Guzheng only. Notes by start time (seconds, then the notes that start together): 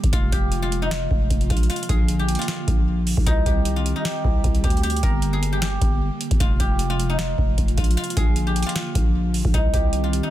Already playing: D#4 G4 A#4
0.13 F4
0.32 G4
0.62 F4
0.82 D#4
1.50 F4
1.70 F4
1.89 G#4
2.19 G4
2.39 F4
2.48 F4
3.27 D#4
3.46 G4
3.76 F4
3.96 D#4
4.05 G4
4.64 G4
4.83 G4
5.03 A#4
5.33 G#4
5.53 G4
5.62 G4
6.40 F4
6.60 G4
6.90 F4
7.09 D#4
7.78 F4
7.97 F4
8.17 G#4
8.47 G4
8.66 F4
8.76 F4
9.54 D#4
9.74 G4
10.04 F4
10.23 D#4